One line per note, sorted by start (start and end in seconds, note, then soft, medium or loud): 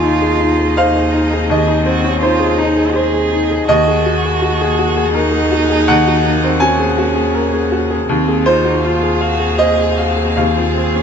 0.00 1.46 D#2 medium
0.00 3.65 D#2 medium
0.00 3.69 C4 medium
0.00 0.03 D#4 medium
0.00 0.32 D#4 medium
0.00 0.78 F4 medium
0.00 1.52 F4 medium
0.00 0.21 G#4 medium
0.00 3.67 G#4 medium
0.00 3.65 D#5 medium
0.00 0.73 G#5 loud
0.21 0.51 G#4 medium
0.40 0.70 D#4 medium
0.59 0.88 G#4 medium
0.77 1.52 D#4 medium
0.77 1.07 C5 medium
0.77 1.46 F5 loud
0.95 1.25 G#4 medium
1.14 1.43 D#4 medium
1.33 1.61 G#4 medium
1.49 3.65 D#2 medium
1.49 1.85 G#4 medium
1.49 2.19 D#5 medium
1.68 1.97 D#4 medium
1.85 2.15 C4 medium
1.85 2.21 F#4 medium
2.04 2.22 C#4 medium
2.21 2.51 D#4 medium
2.21 2.60 F4 medium
2.21 2.94 C5 medium
2.39 2.69 G#4 medium
2.58 2.87 D#4 medium
2.58 2.96 D#4 medium
2.77 3.06 G#4 medium
2.94 3.68 G#4 loud
2.94 3.25 C5 medium
3.14 3.43 G#4 medium
3.32 3.61 D#4 medium
3.51 3.69 G#4 medium
3.68 5.84 D#2 medium
3.68 8.05 D#2 medium
3.68 8.08 A#3 medium
3.68 5.12 F#4 medium
3.68 8.05 G#4 medium
3.68 5.84 D#5 loud
3.68 8.08 F#5 medium
3.87 4.17 G#4 medium
4.06 4.35 F#4 medium
4.25 4.43 G#4 medium
4.42 4.71 F#4 medium
4.61 4.90 G#4 medium
4.79 5.08 F#4 medium
4.97 5.26 G#4 medium
5.14 6.62 D#4 loud
5.14 5.44 A#4 medium
5.33 5.62 G#4 medium
5.51 5.81 F#4 medium
5.69 5.99 G#4 medium
5.88 8.05 D#2 medium
5.88 6.57 F#5 loud
6.07 6.36 F#4 medium
6.25 6.54 A#3 medium
6.44 6.62 C4 medium
6.60 8.08 C#4 medium
6.60 6.90 F#4 medium
6.60 7.66 G#5 loud
6.79 7.08 G#4 medium
6.98 7.27 F#4 medium
7.15 7.45 G#4 medium
7.34 7.64 A#4 medium
7.53 7.83 G#4 medium
7.72 8.02 F#4 medium
7.90 8.09 G#4 medium
8.09 10.33 D#2 medium
8.09 11.03 D#2 medium
8.09 8.48 C4 medium
8.09 11.03 C4 medium
8.09 11.03 G#4 medium
8.09 11.03 F5 medium
8.28 8.58 G#4 medium
8.46 8.86 D#4 medium
8.46 8.76 F4 medium
8.46 9.55 C5 loud
8.65 8.83 F#4 medium
8.84 9.14 F4 medium
8.84 9.22 F4 medium
9.02 9.32 G#4 medium
9.21 9.59 F#4 medium
9.21 9.51 F5 medium
9.39 9.70 G#4 medium
9.58 9.99 G#4 medium
9.58 9.89 C5 medium
9.58 10.33 D#5 loud
9.78 10.09 G#4 soft
9.97 10.38 F#4 medium
9.97 10.29 F5 medium
10.17 10.49 G#4 medium
10.36 11.03 D#2 medium
10.36 11.03 G#4 medium
10.36 11.03 F5 medium
10.57 10.89 F4 medium
10.77 11.03 C4 soft
10.96 11.03 C#4 soft